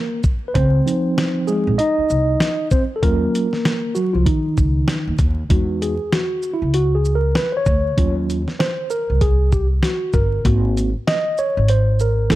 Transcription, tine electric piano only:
0.00 0.21 A#3 medium
0.00 0.20 A#4 medium
0.48 0.54 B4 medium
0.54 0.85 C4 medium
0.54 1.50 C5 loud
0.85 1.75 F3 medium
0.85 1.75 C4 medium
0.85 1.75 D#4 medium
1.47 1.77 G#3 medium
1.47 1.76 G#4 medium
1.78 2.68 D#4 medium
1.78 2.67 D#5 loud
2.71 2.84 C4 medium
2.71 2.83 C5 loud
2.96 3.02 A4 medium
3.03 3.46 F#3 medium
3.03 3.92 A#3 medium
3.03 3.46 C#4 medium
3.03 3.47 F4 medium
3.03 3.98 A#4 loud
3.95 4.13 F#3 medium
3.95 4.14 F#4 medium
4.14 4.26 F3 medium
4.14 4.26 F4 medium
4.26 5.16 D#3 medium
4.26 5.15 D#4 medium
5.49 5.93 G#3 medium
5.49 5.94 D#4 soft
5.49 5.94 F#4 medium
5.82 6.13 G#4 medium
6.13 6.55 F#4 medium
6.54 6.75 E4 medium
6.74 6.95 F#4 medium
6.95 7.16 G#4 medium
7.15 7.36 A#4 medium
7.36 7.53 B4 medium
7.52 7.56 C5 medium
7.57 8.14 C#5 medium
7.97 8.41 F#3 medium
7.97 8.41 C#4 medium
7.97 8.42 F4 medium
8.59 8.88 C5 medium
8.90 9.22 A#4 medium
9.21 9.50 G#4 medium
9.52 9.66 G4 medium
9.84 10.15 F#4 medium
10.14 10.43 A#4 medium
10.45 10.88 A#3 medium
10.45 10.89 C4 medium
10.45 10.89 F#4 medium
11.07 11.39 D#5 loud
11.39 11.70 C#5 medium
11.70 12.01 C5 loud
12.01 12.29 A#4 medium
12.30 12.35 A#3 medium
12.30 12.35 D4 medium
12.30 12.35 E4 medium
12.30 12.35 A4 medium

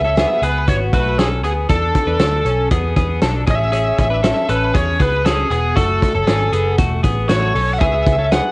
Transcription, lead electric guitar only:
0.00 0.45 E5 loud
0.44 0.69 B4 medium
0.69 0.76 C#5 medium
0.94 1.19 B4 medium
1.19 1.26 G#4 medium
1.44 1.51 G#4 medium
1.70 2.67 A4 medium
3.51 3.97 E5 loud
4.00 4.47 E5 loud
4.50 4.76 B4 medium
4.75 5.01 C#5 medium
5.02 5.25 B4 medium
5.27 5.51 G#4 medium
5.52 5.76 G#4 medium
5.77 6.75 A4 medium
7.29 7.70 C#5 medium
7.73 7.81 F#5 medium
7.78 8.32 E5 medium
8.32 8.52 F#5 medium

